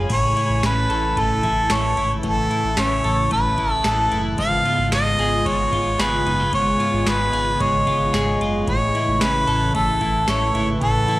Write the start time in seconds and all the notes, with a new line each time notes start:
Already playing: G#3 B3 F4 G#4
0.09 A1 A2 C#3 E3 A3 E4 C#5, kick, crash, ride
0.36 E4, ride
0.49 A1
0.63 A1 C#4 B4, snare, ride, tambourine
0.90 A1 A4, ride
1.17 A1 A3 A4, kick, ride
1.43 A1 E4, kick, ride
1.70 A1 A4 C#5, snare, ride, tambourine
1.97 G#1 E4, ride
2.23 A1 A2 A4, kick, ride
2.50 E4, ride
2.64 A1
2.77 A1 C#4 C#5, snare, ride, tambourine
3.04 A1 A4, ride
3.31 A1 A3 B4, kick, ride
3.58 A1 E4, kick, ride
3.72 A4
3.84 A1 A4, snare, ride, tambourine
4.11 F#1 E4, ride
4.38 G#1 G#2 G#3 B3 F4 F5, kick, ride
4.65 F4, ride
4.78 G#1
4.92 G#1 B3 D#5, snare, ride, tambourine
5.19 G#1 G#4, ride
5.45 G#1 G#3 C#5, kick, ride
5.72 G#1 F4, kick, ride
5.99 G#1 G#4 B4, snare, ride, tambourine
6.26 F#1 D#4, ride
6.40 F4
6.53 G#1 G#2 C#5, kick, ride
6.80 F4, ride
6.93 G#1
7.06 G#1 B3 B4, snare, ride, tambourine
7.33 G#1 G#4, ride
7.60 G#1 G#3 C#5, kick, ride
7.87 G#1 F4, kick, ride
8.14 G#1 G#4, snare, ride, tambourine
8.40 F#1 F4, ride
8.67 A1 A2 E3 A3 E4 C#5, kick, ride
8.95 E4, ride
9.08 A1
9.21 A1 C#4 B4, snare, ride, tambourine
9.47 A1 A4, ride
9.74 A1 A3 A4, kick, ride
10.01 A1 E4, kick, ride
10.28 A1 A4 C#5, snare, ride, tambourine
10.54 G#1 E4, ride
10.81 A1 A2 A4, kick, ride
11.08 E4, ride